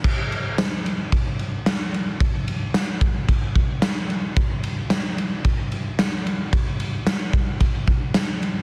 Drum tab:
CC |x-------|--------|--------|--------|
RD |-xxxxxxx|xxxxxxxx|xxxxxxxx|xxxxxxxx|
TB |--x---x-|--x---x-|--x---x-|--x---x-|
SD |--o---o-|--o---o-|--o---o-|--o---o-|
BD |o---o---|o--ooo--|o---o---|o--ooo--|